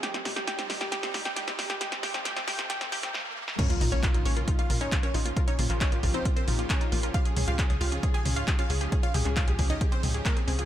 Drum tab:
CC |----------------|----------------|x---------------|----------------|
HH |xxoxxxoxxxoxxxox|xxoxxxoxxxox----|xxoxxxoxxxoxxxox|xxoxxxoxxxoxxxox|
CP |----------------|----------------|----x-------x---|---xx-------x---|
SD |oooooooooooooooo|ooooooooooooo--o|----------------|----------------|
T2 |--o-------o-----|--o-------o-----|--o-------o-----|--o-------o-----|
BD |----------------|----------------|o---o---o---o---|o---o-o-o---o---|

CC |----------------|----------------|
HH |xxoxxxoxxxoxxxox|xxoxxxoxxxoxxxox|
CP |----x-------x---|---xx-------x---|
SD |----------------|----------------|
T2 |--o-------o-----|--o-------o-----|
BD |o---o---o---o---|o---o-o-o---o---|